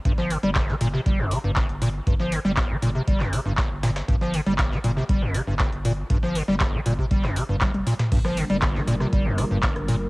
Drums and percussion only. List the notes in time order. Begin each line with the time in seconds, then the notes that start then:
0.05 kick, closed hi-hat
0.18 snare
0.30 closed hi-hat, open hi-hat
0.43 closed hi-hat
0.55 kick, snare, clap, closed hi-hat
0.68 snare
0.81 closed hi-hat, open hi-hat
0.94 snare
1.06 kick, closed hi-hat
1.31 closed hi-hat, open hi-hat
1.56 kick, snare, clap, closed hi-hat
1.69 closed hi-hat
1.82 closed hi-hat, open hi-hat
2.07 kick, closed hi-hat
2.20 snare
2.32 closed hi-hat, open hi-hat
2.45 snare
2.57 kick, snare, clap, closed hi-hat
2.82 closed hi-hat, open hi-hat
3.08 kick, closed hi-hat
3.20 snare, clap
3.33 closed hi-hat, open hi-hat
3.58 kick, snare, clap, closed hi-hat
3.83 snare, closed hi-hat, open hi-hat
3.96 snare, closed hi-hat
4.08 kick, closed hi-hat
4.21 snare
4.34 closed hi-hat, open hi-hat
4.46 closed hi-hat
4.58 kick, snare, clap, closed hi-hat
4.72 snare
4.84 closed hi-hat, open hi-hat
4.97 snare
5.09 kick, closed hi-hat
5.34 closed hi-hat, open hi-hat
5.59 kick, snare, clap, closed hi-hat
5.72 closed hi-hat
5.85 closed hi-hat, open hi-hat
6.10 kick, closed hi-hat
6.23 snare
6.35 closed hi-hat, open hi-hat
6.48 snare
6.60 kick, snare, clap, closed hi-hat
6.86 closed hi-hat, open hi-hat
6.99 kick
7.11 kick, closed hi-hat
7.23 snare, clap
7.36 closed hi-hat, open hi-hat
7.61 kick, snare, clap, closed hi-hat, high tom
7.74 closed hi-hat, high tom
7.87 closed hi-hat, open hi-hat
7.99 snare, closed hi-hat, mid tom
8.12 kick, closed hi-hat, crash
8.25 cross-stick, snare
8.37 closed hi-hat, open hi-hat
8.50 closed hi-hat
8.62 kick, cross-stick, snare, clap, closed hi-hat
8.75 snare
8.87 closed hi-hat, open hi-hat
9.00 cross-stick, snare
9.13 kick, closed hi-hat
9.38 cross-stick, closed hi-hat, open hi-hat
9.63 kick, snare, clap, closed hi-hat
9.76 cross-stick, closed hi-hat
9.88 closed hi-hat, open hi-hat